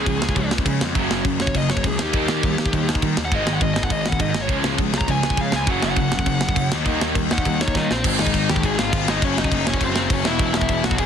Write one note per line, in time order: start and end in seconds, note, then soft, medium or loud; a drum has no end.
0.00 0.94 C#3 medium
0.00 0.95 G#3 medium
0.00 0.96 C#4 loud
0.00 0.49 G#4 loud
0.06 0.20 C#2 medium
0.06 0.20 C#3 medium
0.06 0.20 F3 medium
0.06 0.20 G#3 medium
0.06 kick loud
0.06 crash medium
0.22 0.35 C#2 medium
0.22 snare loud
0.29 kick loud
0.36 0.64 C#2 loud
0.36 0.49 C#3 medium
0.36 0.49 F3 medium
0.36 0.49 G#3 medium
0.36 kick loud
0.36 crash medium
0.51 snare loud
0.58 kick medium
0.65 0.79 C#3 medium
0.65 0.80 C#3 medium
0.65 0.79 F3 medium
0.65 0.79 G#3 medium
0.65 kick loud
0.65 crash medium
0.81 0.95 F2 medium
0.81 snare loud
0.94 1.09 F#1 loud
0.94 1.23 F#2 medium
0.94 1.24 C#3 medium
0.94 1.24 F#3 loud
0.94 kick loud
0.94 crash medium
0.99 2.00 F#3 medium
1.10 1.24 F#1 loud
1.10 snare loud
1.24 1.39 F#1 medium
1.24 1.38 F#2 medium
1.24 1.38 C#3 medium
1.24 kick loud
1.24 crash medium
1.40 1.54 F#1 medium
1.40 1.56 C#5 medium
1.40 snare loud
1.47 kick loud
1.54 1.82 F#1 loud
1.54 1.68 F#2 medium
1.54 1.68 C#3 medium
1.54 1.71 D#5 medium
1.54 kick loud
1.54 crash medium
1.70 1.84 C#5 medium
1.70 snare loud
1.77 kick medium
1.84 1.98 C#2 medium
1.84 1.97 F#2 medium
1.84 1.97 C#3 medium
1.84 2.02 G#4 loud
1.84 kick loud
1.84 crash medium
1.99 2.13 D#2 medium
1.99 3.16 D#3 medium
1.99 3.17 A#3 medium
1.99 3.18 D#4 medium
1.99 2.86 G4 loud
1.99 snare loud
2.13 2.28 D#2 medium
2.13 2.42 D#3 medium
2.13 2.42 G3 loud
2.13 2.42 A#3 loud
2.13 2.43 D#4 medium
2.13 kick loud
2.13 crash medium
2.28 2.42 D#2 loud
2.28 snare loud
2.43 2.57 D#2 medium
2.43 2.57 D#3 medium
2.43 2.57 G3 medium
2.43 2.57 A#3 medium
2.43 kick loud
2.43 crash medium
2.58 2.72 D#2 medium
2.58 snare loud
2.66 kick loud
2.73 3.00 D#2 loud
2.73 2.86 D#3 medium
2.73 2.86 G3 medium
2.73 2.86 A#3 medium
2.73 kick loud
2.73 crash medium
2.89 snare loud
2.95 kick medium
3.02 3.16 D#3 loud
3.02 3.16 D#3 medium
3.02 3.16 G3 medium
3.02 3.16 A#3 medium
3.02 kick loud
3.02 crash medium
3.17 3.31 D#2 loud
3.17 snare loud
3.25 3.33 F#5 medium
3.31 3.46 G#1 loud
3.31 3.60 G#2 medium
3.31 3.61 D#3 medium
3.31 3.61 G#3 loud
3.31 kick loud
3.31 crash medium
3.36 3.42 D#5 loud
3.44 3.60 G#1 loud
3.44 3.53 D#5 medium
3.44 snare loud
3.53 3.62 F#5 medium
3.61 3.75 G#1 loud
3.61 3.75 G#2 medium
3.61 3.75 D#3 medium
3.61 3.71 D#5 loud
3.61 kick loud
3.61 crash medium
3.74 3.90 G#1 medium
3.74 3.83 D#5 medium
3.74 snare loud
3.83 3.91 F#5 medium
3.83 kick loud
3.90 4.18 G#1 loud
3.90 4.04 G#2 medium
3.90 4.04 D#3 medium
3.90 4.00 D#5 loud
3.90 kick loud
3.90 crash medium
4.01 4.09 D#5 medium
4.06 4.21 F#5 medium
4.06 snare loud
4.12 kick loud
4.19 4.33 G#2 medium
4.19 4.33 G#2 loud
4.19 4.33 D#3 medium
4.19 4.30 D#5 loud
4.19 kick loud
4.19 crash medium
4.31 4.48 G#1 medium
4.31 4.42 D#5 medium
4.31 snare loud
4.42 4.55 C#5 medium
4.48 4.63 C#2 medium
4.48 4.77 C#3 medium
4.48 4.77 F3 loud
4.48 4.78 G#3 medium
4.48 4.78 C#4 medium
4.48 kick loud
4.48 crash medium
4.64 4.78 C#2 loud
4.64 snare loud
4.78 4.92 C#2 medium
4.78 4.92 C#3 medium
4.78 4.92 F3 medium
4.78 4.93 G#3 medium
4.78 kick loud
4.78 crash medium
4.93 5.07 C#2 medium
4.93 snare loud
4.98 5.10 A#5 loud
4.98 kick medium
5.07 5.36 C#2 loud
5.07 5.21 C#3 medium
5.07 5.22 F3 medium
5.07 5.22 G#3 medium
5.07 5.39 G#5 loud
5.07 kick loud
5.07 crash medium
5.23 snare loud
5.30 kick medium
5.37 5.52 C#3 medium
5.37 5.51 C#3 medium
5.37 5.51 F3 medium
5.37 5.51 G#3 medium
5.37 5.54 F5 medium
5.37 kick loud
5.37 crash medium
5.52 5.66 C#2 medium
5.52 5.69 G#5 medium
5.52 snare loud
5.67 5.81 F#1 loud
5.67 5.96 F#2 medium
5.67 5.96 C#3 medium
5.67 5.97 F#3 loud
5.67 5.83 F#5 loud
5.67 kick loud
5.67 crash medium
5.82 5.96 F#1 loud
5.82 6.70 F#5 loud
5.82 snare loud
5.96 6.11 F#1 medium
5.96 6.11 F#2 medium
5.96 6.11 C#3 medium
5.96 kick loud
5.96 crash medium
6.12 6.26 F#1 medium
6.12 snare loud
6.19 kick medium
6.26 6.54 F#1 loud
6.26 6.40 F#2 medium
6.26 6.40 C#3 medium
6.26 kick loud
6.26 crash medium
6.41 snare loud
6.49 kick medium
6.56 6.69 F#2 medium
6.56 6.70 F#2 medium
6.56 6.70 C#3 medium
6.56 kick loud
6.56 crash medium
6.71 6.85 D#2 medium
6.71 7.88 D#3 medium
6.71 7.89 A#3 medium
6.71 7.90 D#4 medium
6.71 snare loud
6.85 7.00 D#2 medium
6.85 7.14 D#3 medium
6.85 7.13 G3 loud
6.85 7.14 A#3 medium
6.85 7.14 D#4 loud
6.85 kick loud
6.85 crash medium
7.01 7.15 D#2 medium
7.01 snare loud
7.14 7.29 D#2 medium
7.14 7.29 D#3 medium
7.14 7.28 G3 medium
7.14 7.29 A#3 medium
7.14 kick loud
7.14 crash medium
7.31 7.44 D#2 medium
7.31 7.60 F#5 loud
7.31 snare loud
7.38 kick medium
7.45 7.73 D#2 loud
7.45 7.59 D#3 medium
7.45 7.59 G3 medium
7.45 7.59 A#3 medium
7.45 kick loud
7.45 crash medium
7.61 7.75 C#5 loud
7.61 snare loud
7.68 kick medium
7.75 7.88 D#3 medium
7.75 7.89 D#3 loud
7.75 7.88 G3 loud
7.75 7.88 A#3 medium
7.75 7.90 C#4 medium
7.75 7.91 C#5 medium
7.75 7.92 D#5 loud
7.75 kick loud
7.75 snare medium
7.90 8.04 A#1 loud
7.90 8.18 C4 medium
7.90 8.21 C5 medium
7.90 snare loud
8.04 8.16 G#1 medium
8.04 8.77 G#2 loud
8.04 8.78 D#3 medium
8.04 8.77 G#3 medium
8.04 kick loud
8.04 crash loud
8.04 crash medium
8.19 8.32 G#1 loud
8.19 8.48 D#4 medium
8.19 8.48 D#5 medium
8.19 snare loud
8.27 kick loud
8.34 8.46 G#1 medium
8.34 kick medium
8.34 crash medium
8.49 8.61 D#2 medium
8.49 8.63 G4 medium
8.49 8.65 G5 medium
8.49 snare loud
8.56 kick loud
8.63 8.75 G#1 loud
8.63 8.77 G#4 medium
8.63 8.79 G#5 loud
8.63 kick loud
8.63 crash medium
8.78 8.91 G#1 loud
8.78 8.91 G#2 medium
8.78 8.92 D#3 medium
8.78 8.92 G#3 medium
8.78 9.06 F4 medium
8.78 9.09 F5 medium
8.78 snare loud
8.92 9.05 G#1 medium
8.92 9.21 G#2 medium
8.92 9.22 D#3 medium
8.92 9.22 G#3 medium
8.92 kick loud
8.92 crash medium
9.07 9.20 G#1 loud
9.07 9.22 D#3 medium
9.07 9.21 G#3 medium
9.07 9.22 D#4 medium
9.07 9.23 D#5 medium
9.07 snare loud
9.11 9.22 G#2 medium
9.22 9.34 F#1 medium
9.22 9.95 F#2 loud
9.22 9.95 C#3 loud
9.22 9.94 F#3 loud
9.22 9.37 C#4 medium
9.22 9.38 C#5 loud
9.22 kick loud
9.22 crash medium
9.37 9.49 F#1 loud
9.37 9.65 D#4 medium
9.37 9.67 D#5 medium
9.37 snare loud
9.44 kick medium
9.51 9.64 F#1 medium
9.51 kick loud
9.51 crash medium
9.67 9.79 F#1 loud
9.67 9.81 C#4 medium
9.67 9.82 C#5 medium
9.67 snare loud
9.74 kick loud
9.81 9.93 F#1 loud
9.81 10.10 C4 medium
9.81 10.13 C5 medium
9.81 kick loud
9.81 crash medium
9.96 10.09 F#1 medium
9.96 10.08 F#2 medium
9.96 10.09 C#3 medium
9.96 10.09 F#3 medium
9.96 snare loud
10.09 10.22 F#1 medium
10.09 10.24 F#2 medium
10.09 10.24 C#3 medium
10.09 10.25 F#3 medium
10.09 10.25 C#4 medium
10.09 kick loud
10.09 crash medium
10.13 10.27 C#5 medium
10.25 10.37 E1 medium
10.25 10.97 E2 medium
10.25 10.98 B2 medium
10.25 10.99 E3 medium
10.25 10.53 E4 medium
10.25 10.56 E5 medium
10.25 snare loud
10.39 10.52 E1 loud
10.39 kick loud
10.39 crash medium
10.54 10.67 E1 medium
10.54 10.83 E4 medium
10.54 10.85 E5 loud
10.54 snare loud
10.61 kick loud
10.69 10.81 E1 medium
10.69 kick loud
10.69 crash medium
10.84 10.96 B1 medium
10.84 10.98 F#4 medium
10.84 10.98 F#5 medium
10.84 snare loud
10.91 kick medium
10.98 11.06 E1 loud
10.98 11.06 E2 medium
10.98 11.06 B2 medium
10.98 11.06 E3 medium
10.98 11.06 G#4 medium
10.98 11.06 G#5 loud
10.98 kick loud
10.98 crash medium